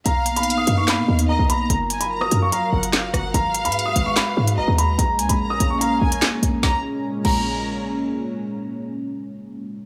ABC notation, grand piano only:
X:1
M:4/4
L:1/16
Q:1/4=146
K:Bbphr
V:1 name="Grand piano"
^a3 =b2 ^d'2 _d' b4 a2 b2 | b3 c'2 e'2 d' b8 | b3 c'2 e'2 d' c'4 b2 c'2 | b3 c'2 e'2 d' b8 |
b2 z4 b6 z4 | z16 |]